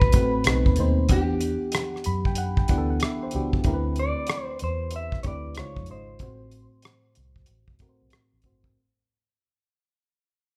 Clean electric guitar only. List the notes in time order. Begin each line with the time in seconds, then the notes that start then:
Already playing: B4
1.12 G4
3.99 D5
4.43 C5
4.64 C5
4.96 E5
5.23 C#5
5.28 D5
5.59 C#5
5.91 C5